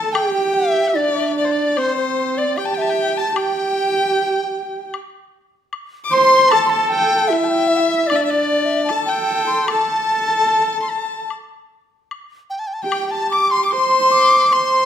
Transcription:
Already playing: A4 A5
0.13 G4 G5, high woodblock
0.34 G5
0.54 E5
0.90 E5
0.95 D4 D5
1.16 E5
1.36 D5
1.45 C5
1.51 D5
1.77 C4 C5, high woodblock
1.97 C5
2.37 D5
2.57 G4 G5, high woodblock
2.65 A5
2.74 E5 G5
2.81 A5
2.89 G5
3.17 A5
3.29 A5
3.35 G4 G5, high woodblock
4.94 high woodblock
5.73 high woodblock
6.04 D6
6.11 C5 C6
6.51 A4 A5, high woodblock
6.66 C6
6.70 A5
6.84 A5
6.90 G5
7.28 E4 E5
7.33 E5
7.44 A5
7.49 G5
7.68 E5
7.76 G5
7.81 E5
8.07 D4 D5, high woodblock
8.15 E5
8.21 D5
8.25 D5 E5
8.30 D5
8.65 E5
8.85 A5
8.89 A4, high woodblock
9.05 G5
9.46 C6
9.67 A4 A5, high woodblock
10.49 low woodblock
10.82 C6
10.90 A5
11.30 high woodblock
12.11 high woodblock
12.50 G5
12.59 A5
12.67 G5
12.74 A5
12.82 G4 G5
12.92 high woodblock
13.11 A5
13.31 D6
13.52 C6
13.64 D6
13.70 C5 C6
14.12 D6
14.51 C5 C6, high woodblock

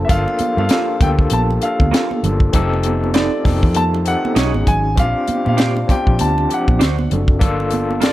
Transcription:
Already playing: F3 A#3 D4 F4 A4
0.05 A#3 D4 E5
0.09 G1 F4 G4 A4 F5, kick, closed hi-hat, low conga
0.28 muted conga
0.39 muted fingered electric bass stroke, closed hi-hat, high conga
0.57 G2 A#3 D4 F4 A4 F5, high conga
0.69 A#3 F4 A4, snare, closed hi-hat
1.01 D2 A#3 D4 F4 A4 G5, kick, closed hi-hat, high conga, low conga
1.19 kick
1.30 A#1 A5, closed hi-hat, muted conga, high conga
1.50 muted conga
1.62 A#3 D4 F4 A4 F5, closed hi-hat
1.80 D2, kick, high conga
1.92 A#3 F4 A4, snare, closed hi-hat, muted conga
2.11 high conga
2.23 G1 A#3 D4 F4 A4, closed hi-hat, low conga
2.40 kick
2.52 F1 D#3 A3 C4 D#4 F4 G4 A4, kick, closed hi-hat, muted conga, low conga
2.73 muted conga
2.83 closed hi-hat, high conga
3.04 high conga
3.14 C4 D#4 A4 D5, snare, closed hi-hat
3.44 F1 C4 D#4 G4 A4, kick, snare, open hi-hat, high conga, low conga
3.63 F2, kick
3.75 A5, closed hi-hat, high conga
3.94 muted conga
4.05 C4 D#4 G4 A4 F#5, closed hi-hat
4.25 high conga
4.35 B1 C#3 G#3 C#4 D#4 F#4 G4 G#4 C#5, snare, closed hi-hat, muted conga
4.45 G#4
4.54 G#1, muted conga, high conga
4.67 G#1 G#5, kick, closed hi-hat, low conga
4.95 A#1 C3 G3 C4 D4 F4 G4, kick, closed hi-hat, muted conga, low conga
4.99 F5
5.28 muted fingered electric bass stroke, closed hi-hat, high conga
5.44 A#2 C4 D4 F4 G4, high conga
5.48 F5
5.57 D4 G4 C5, snare, closed hi-hat
5.77 muted conga
5.87 C4 D4 F4 G4 G5, kick, closed hi-hat, high conga, low conga
6.07 A#1, kick
6.19 D2 A5, closed hi-hat, high conga
6.38 muted conga
6.49 F3 C4 D4 G4, closed hi-hat
6.54 F#5
6.68 A#1, kick, high conga
6.79 D2 F#3 D4 F#4 C5, snare, closed hi-hat
6.99 muted conga, high conga
7.10 F#1 C4 D4 F#4 A4, closed hi-hat, low conga
7.28 kick
7.39 G1 A#2 A#3 D4 F4 A4, kick, closed hi-hat, muted conga, low conga
7.60 muted conga
7.71 closed hi-hat, high conga
7.91 high conga
8.01 A#3 F4 A4 D5, snare, closed hi-hat, muted conga

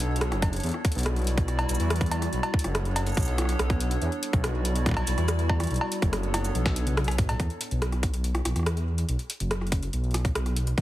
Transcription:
Already playing: B1 B3 D4 A4 C#5
0.00 closed hi-hat
0.16 closed hi-hat
0.21 cross-stick, closed hi-hat
0.32 F#1, cross-stick, closed hi-hat
0.42 kick, closed hi-hat, cowbell
0.53 closed hi-hat
0.56 closed hi-hat
0.60 D5, closed hi-hat
0.63 E2 G3 E4 F#4, closed hi-hat
0.66 closed hi-hat
0.69 closed hi-hat
0.71 cross-stick, closed hi-hat
0.85 kick, closed hi-hat
0.92 B1, closed hi-hat
0.95 closed hi-hat
0.98 closed hi-hat
1.01 closed hi-hat
1.03 cross-stick, closed hi-hat
1.06 closed hi-hat
1.16 closed hi-hat
1.19 closed hi-hat
1.22 closed hi-hat
1.24 closed hi-hat
1.27 closed hi-hat
1.38 kick, closed hi-hat
1.48 cross-stick, closed hi-hat
1.59 closed hi-hat, cowbell
1.69 B1, closed hi-hat, cabasa
1.75 cabasa
1.80 E2, closed hi-hat
1.90 cross-stick, closed hi-hat
1.96 closed hi-hat
2.01 kick, closed hi-hat
2.06 closed hi-hat
2.11 closed hi-hat, cowbell
2.22 cross-stick, closed hi-hat
2.33 B1 B3 D4 A4 C#5, closed hi-hat
2.43 closed hi-hat, cowbell
2.54 kick
2.59 closed hi-hat
2.64 F#1, cross-stick, closed hi-hat
2.75 cross-stick, closed hi-hat
2.85 closed hi-hat
2.96 closed hi-hat, cowbell
3.07 closed hi-hat, cabasa
3.09 cabasa
3.12 cabasa
3.14 B1, kick, closed hi-hat, cabasa
3.17 cabasa
3.20 cabasa
3.22 cabasa
3.25 closed hi-hat, cabasa
3.38 cross-stick, closed hi-hat
3.42 cross-stick
3.45 cross-stick
3.49 cross-stick, closed hi-hat
3.52 cross-stick
3.56 B1, cross-stick
3.59 cross-stick, closed hi-hat
3.70 kick, cross-stick, closed hi-hat
3.80 closed hi-hat
3.91 closed hi-hat
4.01 E2 G3 E4 F#4 D5, closed hi-hat
4.12 closed hi-hat
4.23 closed hi-hat
4.33 B1, kick, closed hi-hat
4.44 cross-stick, closed hi-hat
4.65 closed hi-hat
4.76 closed hi-hat
4.86 kick, cross-stick, closed hi-hat
4.89 kick
4.91 kick
4.94 kick, closed hi-hat, cowbell
5.07 B1, closed hi-hat, cabasa
5.18 E2, cross-stick, closed hi-hat
5.28 cross-stick, closed hi-hat, cabasa
5.39 closed hi-hat
5.49 kick, cowbell
5.60 cross-stick, closed hi-hat
5.64 closed hi-hat
5.67 closed hi-hat
5.71 B1 B3 D4 A4 C#5, closed hi-hat
5.74 closed hi-hat
5.76 closed hi-hat
5.78 closed hi-hat, cowbell
5.92 closed hi-hat
6.02 F#1, kick, cross-stick, closed hi-hat
6.13 cross-stick, closed hi-hat
6.23 closed hi-hat
6.34 cross-stick, closed hi-hat, cowbell
6.45 closed hi-hat, cabasa
6.55 B1, closed hi-hat, high tom
6.66 kick, cross-stick, snare, closed hi-hat
6.76 closed hi-hat
6.87 closed hi-hat, mid tom
6.97 cross-stick, closed hi-hat, mid tom
7.04 cross-stick, closed hi-hat
7.08 closed hi-hat
7.11 closed hi-hat
7.18 kick, closed hi-hat, mid tom
7.29 closed hi-hat, mid tom, cowbell
7.32 mid tom
7.34 mid tom
7.37 E2, kick, closed hi-hat, mid tom
7.50 closed hi-hat
7.61 closed hi-hat
7.71 B1, closed hi-hat
7.82 cross-stick, closed hi-hat
7.92 cross-stick, closed hi-hat
8.03 kick, cross-stick, closed hi-hat
8.14 closed hi-hat
8.24 closed hi-hat
8.35 cross-stick, closed hi-hat
8.45 B1, cross-stick, closed hi-hat
8.56 E2, cross-stick, closed hi-hat
8.59 cross-stick
8.63 cross-stick
8.66 cross-stick, closed hi-hat
8.73 cross-stick, closed hi-hat
8.98 closed hi-hat
9.09 B1, closed hi-hat
9.19 closed hi-hat
9.30 closed hi-hat
9.40 F#1, closed hi-hat
9.51 cross-stick, closed hi-hat
9.61 cross-stick
9.67 closed hi-hat
9.72 kick, closed hi-hat
9.83 closed hi-hat
9.93 B1, closed hi-hat
10.04 closed hi-hat
10.11 cross-stick, closed hi-hat
10.14 closed hi-hat
10.18 closed hi-hat
10.25 kick, closed hi-hat
10.35 B1, cross-stick, closed hi-hat
10.46 cross-stick, closed hi-hat
10.57 closed hi-hat
10.67 closed hi-hat
10.78 E2, kick, closed hi-hat

